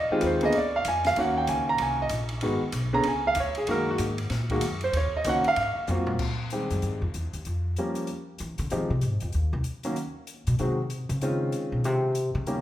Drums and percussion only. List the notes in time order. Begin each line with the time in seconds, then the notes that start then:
0.21 hi-hat pedal, ride
0.41 ride
0.52 ride
0.85 hi-hat pedal, ride
1.04 snare, ride
1.16 ride
1.47 hi-hat pedal, ride
1.78 ride
2.09 hi-hat pedal, ride
2.29 ride
2.41 ride
2.72 hi-hat pedal, ride
3.03 ride
3.35 hi-hat pedal, ride
3.55 ride
3.67 ride
3.98 hi-hat pedal, ride
4.18 ride
4.30 snare, ride
4.50 kick, ride
4.61 hi-hat pedal, ride
4.81 ride
4.93 ride
5.24 hi-hat pedal, ride
5.44 ride
5.56 ride
5.87 hi-hat pedal, mid tom
6.07 floor tom
6.19 kick, crash
6.50 closed hi-hat
6.70 closed hi-hat
6.82 closed hi-hat
7.14 closed hi-hat
7.33 closed hi-hat
7.45 closed hi-hat
7.76 closed hi-hat
7.95 closed hi-hat
8.07 closed hi-hat
8.38 closed hi-hat
8.58 closed hi-hat
8.70 closed hi-hat
9.01 closed hi-hat
9.20 closed hi-hat
9.32 closed hi-hat
9.64 closed hi-hat
9.83 closed hi-hat
9.96 closed hi-hat
10.27 closed hi-hat
10.47 closed hi-hat
10.59 closed hi-hat
10.90 closed hi-hat
11.09 closed hi-hat
11.21 closed hi-hat
11.52 closed hi-hat
11.84 closed hi-hat
12.15 closed hi-hat
12.47 closed hi-hat